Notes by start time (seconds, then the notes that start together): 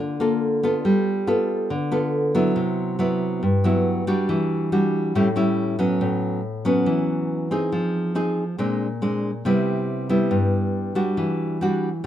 Already playing: A#3 F4 A4
0.00 D3
0.20 A#3 F4 A4
0.63 B3 F4 A4
0.85 G3
1.27 B3 F4 A4
1.70 D3
1.92 B3 F4 A4
2.35 F#3 B3 E4
2.56 C3
2.99 F#3 B3 E4
3.43 G2
3.64 F#3 B3 E4
4.07 G3 D4 F#4
4.29 E3
4.72 G3 D4 F#4
5.15 A2 G3 C#4 E4
5.36 G3 C#4 E4
5.79 F#3 B3 C#4
6.01 A2
6.65 F#3 B3 C#4
6.86 E3
7.51 C4 D#4 G#4
7.72 F3
8.15 C4 D#4 G#4
8.58 A#2 G#3 C4 D4
9.02 G#3 C4 D4
9.45 C3 G3 B3 E4
10.09 G3 B3 E4
10.31 G2
10.95 G3 D4 F#4
11.17 E3
11.61 G3 D4 F#4